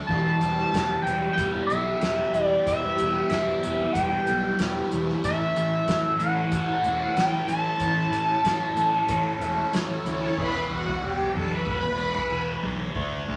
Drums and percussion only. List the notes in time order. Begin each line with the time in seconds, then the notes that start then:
0.09 kick, crash
0.41 closed hi-hat
0.73 kick, snare, closed hi-hat
1.07 snare, closed hi-hat
1.38 kick, closed hi-hat
1.70 closed hi-hat
2.01 snare, closed hi-hat
2.34 closed hi-hat
2.67 kick, closed hi-hat
2.98 closed hi-hat
3.30 kick, snare, closed hi-hat
3.48 snare
3.63 closed hi-hat
3.95 kick, closed hi-hat
4.27 closed hi-hat
4.59 snare, closed hi-hat
4.92 closed hi-hat
5.09 snare
5.24 kick, closed hi-hat
5.56 closed hi-hat
5.88 kick, snare, closed hi-hat
6.20 closed hi-hat
6.52 kick, closed hi-hat
6.84 closed hi-hat
7.17 snare, closed hi-hat
7.48 closed hi-hat
7.80 kick, closed hi-hat
8.13 closed hi-hat
8.44 kick, snare, closed hi-hat
8.77 closed hi-hat
9.08 kick, closed hi-hat
9.41 closed hi-hat
9.73 snare, closed hi-hat
10.06 closed hi-hat
10.38 kick, floor tom, crash
10.70 floor tom
10.87 floor tom
11.20 floor tom
11.36 mid tom
11.67 kick, floor tom
12.16 floor tom
12.63 floor tom
12.95 kick, floor tom
13.28 floor tom